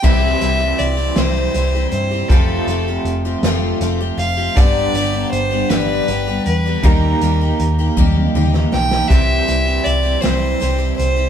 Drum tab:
CC |x-----------|------------|------------|------------|
HH |--x-x-x-x-x-|x-x-x-x-x-x-|x-x-x-x-x-x-|x-x-x-------|
SD |------o-----|------o-----|------o-----|---------ooo|
T1 |------------|------------|------------|------oo----|
T2 |------------|------------|------------|--------o---|
BD |o-----------|o-----------|o-----------|o-----o-----|

CC |------------|
HH |x-x-x-x-x-x-|
SD |------o-----|
T1 |------------|
T2 |------------|
BD |o-----------|